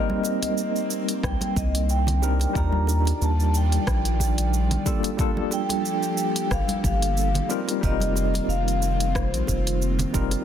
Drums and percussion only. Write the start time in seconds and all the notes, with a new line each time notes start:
0.10 high conga
0.23 high bongo, cabasa
0.42 closed hi-hat, high bongo, high conga, cabasa
0.58 cabasa
0.76 cabasa
0.91 cabasa
1.09 closed hi-hat, cabasa
1.24 kick, cross-stick, cabasa
1.41 closed hi-hat, high conga
1.56 kick, cabasa
1.75 closed hi-hat, cabasa
1.89 cabasa
2.07 closed hi-hat, low conga
2.22 high bongo, cabasa
2.40 closed hi-hat, high bongo, cabasa
2.55 kick, cabasa
2.72 high conga
2.87 high bongo, cabasa
3.05 closed hi-hat, high bongo, cabasa
3.22 cabasa
3.40 cabasa
3.55 cabasa
3.72 closed hi-hat, cabasa
3.87 kick, cross-stick, cabasa
4.05 closed hi-hat
4.20 kick, high bongo, cabasa
4.38 closed hi-hat, cabasa
4.54 cabasa
4.71 closed hi-hat, low conga
4.86 kick, cabasa
5.03 closed hi-hat, high bongo, cabasa
5.19 kick, cabasa
5.37 high conga
5.51 high bongo, cabasa
5.69 closed hi-hat, high bongo, high conga, cabasa
5.85 cabasa
6.03 cabasa
6.18 cabasa
6.36 closed hi-hat, cabasa
6.51 kick, cross-stick, cabasa
6.68 closed hi-hat, high conga
6.84 kick, cabasa
7.02 closed hi-hat, cabasa
7.17 cabasa
7.34 closed hi-hat, low conga
7.49 high bongo, cabasa
7.68 closed hi-hat, high bongo, cabasa
7.83 kick, cabasa
8.00 closed hi-hat, high conga, cabasa
8.16 high bongo, cabasa
8.34 closed hi-hat, high bongo, high conga, cabasa
8.50 cabasa
8.68 closed hi-hat, cabasa
8.82 cabasa
9.00 closed hi-hat, cabasa
9.15 kick, cross-stick, cabasa
9.34 closed hi-hat, cabasa
9.47 kick, high bongo, cabasa
9.67 closed hi-hat, cabasa
9.82 cabasa
9.99 closed hi-hat, low conga, cabasa
10.14 kick, cabasa
10.31 closed hi-hat, high bongo, cabasa